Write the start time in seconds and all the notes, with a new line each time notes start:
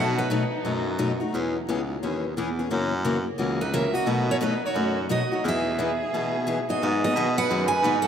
Already playing: B2 F#3 A3 D#4 A4 F#5
0.00 F#4
0.18 D#4 B4
0.30 B2 F#3 A3 D#4 F#4
0.65 F#2 B2 F#3 A3 D#4 F#4
0.99 B2 F#3 A3 D#4 F#4
1.20 A3 D#4 F#4
1.34 E2 E3 B3 C#4 G#4
1.68 C#2 E3 B3 C#4 G#4
2.03 D#2 E3 B3 C#4 G#4
2.37 E2 E3 B3 C#4 G#4
2.59 B3 C#4 G#4
2.70 F#2 C#3 E3 A#3 C#4 F#4
3.05 C#3 E3 A#3 C#4 F#4
3.38 C#2 C#3 E3 A#3 C#4 F#4
3.61 D#4 B4
3.73 C#3 E3 A#3 C#4 F#4 A#4 E5
3.94 A#3 C#4 F#4 D#5
4.06 B2 F#3 A3 D#4 F#4
4.30 E4 C#5
4.41 B2 F#3 A3 D#4 F#4 B4
4.63 F#4 C#5
4.74 F#2 B2 F#3 A3 D#4 F#4
5.09 B2 F#3 A3 D#4 F#4 D#5
5.32 A3 D#4 F#4
5.44 E2 E3 B3 D#4 G#4
5.48 E5
5.79 E3 B3 D#4 G#4
6.13 B2 E3 B3 D#4 G#4
6.47 E3 B3 D#4 G#4
6.69 B3 D#4 F#4 G#4 D#5
6.82 G#2 D#3 F#3 B3 D#4 G#4
7.02 D#4 F#4 G#4 D#5
7.06 B3
7.16 B2 D#3 F#3 B3 D#4 G#4
7.35 B4 F#5
7.49 F#2 D#3 F#3 B3 D#4 G#4
7.68 B4 G#5
7.82 G#2 D#3 F#3 B3 D#4 G#4
8.02 A4 F#5